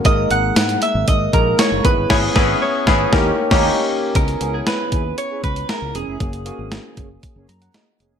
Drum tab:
CC |----------------|x----------x----|----------------|----------------|
HH |x-x-xxx-x-x-x-x-|----------------|xxx-x-x-x-xxx-x-|xxx-x-x-x-xxx-x-|
TB |----x-------x---|----------------|----------------|----------------|
SD |----o-------o---|o-o---o-o--o----|----o-------o---|----o-------o---|
BD |o-------o-o---o-|o-o---o-o--o----|o-----o---o-----|o-----o-o-------|